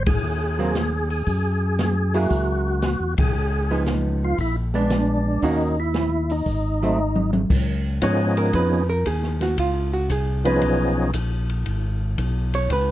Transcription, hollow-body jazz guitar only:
0.59 0.73 F#3 medium
0.59 0.74 A#3 medium
0.59 0.74 C4 medium
2.14 2.80 F#3 medium
2.14 2.80 A#3 medium
2.14 2.80 E4 medium
2.14 2.80 G#4 medium
3.71 4.36 F3 medium
3.71 4.36 B3 medium
3.71 4.36 D#4 medium
4.74 5.39 G#3 medium
4.74 5.40 B3 medium
4.74 5.40 D4 medium
5.42 5.75 D#3 medium
5.42 5.75 A#3 medium
5.42 5.75 C#4 medium
5.42 5.75 F#4 medium
6.83 6.97 F#3 medium
6.83 6.98 A3 medium
6.83 6.98 C4 medium
8.03 8.37 C#5 medium
8.38 8.54 A#4 medium
8.55 8.89 B4 medium
8.90 9.06 A#4 medium
9.07 9.41 G#4 medium
9.42 9.58 F#4 medium
9.60 9.93 F4 medium
9.94 10.10 F#4 medium
10.12 10.46 G#4 medium
10.46 11.10 B4 medium
12.55 12.70 C#5 medium
12.72 12.91 B4 medium

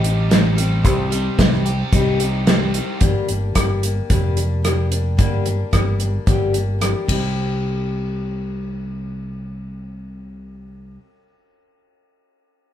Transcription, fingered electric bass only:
0.00 0.85 A1 loud
0.85 1.28 C2 medium
1.39 1.82 C2 loud
1.93 2.80 C2 medium
3.02 3.12 G1 medium
3.29 3.50 G1 medium
3.56 3.99 G1 medium
4.11 5.19 F1 medium
5.19 5.62 G1 medium
5.73 6.17 G1 loud
6.27 6.93 G1 medium
7.09 10.97 C2 medium

